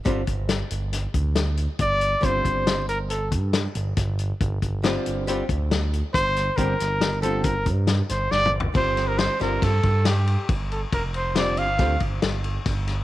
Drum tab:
RD |------------------------------|------------------------------|------------------------------|------------------------------|
HH |x--x--x--x--x--x--x--x--x--x--|x--x--x--x--x--x--x--x--x--x--|x--x--x--x--x--x--x--x--x--x--|x--x--x--x--x--x--x--x--------|
SD |------o-----o-----o-----------|------o-----------o-----o-----|------o-----------o--------o--|---o--o-----------o--o--o-----|
T2 |------------------------------|------------------------------|------------------------------|--------------------------o---|
FT |------------------------------|------------------------------|------------------------------|----------------------------o-|
BD |o--o-----------o--------o-----|o--o-----------o--------o-----|o--o-----------o--------o-----|o-----------o--o--------------|

RD |x--x--x--x--x--x--x--x--x--x--|x--x--x--x--x--x--x--x--x--x--|
HH |------------------------------|------------------------------|
SD |---o--o--o--o-----o-----------|------o-----o-----o-----o--o--|
T2 |------------------------------|------------------------------|
FT |------------------------------|------------------------------|
BD |o-----------o--o--------o-----|o-----------o--o--------o-----|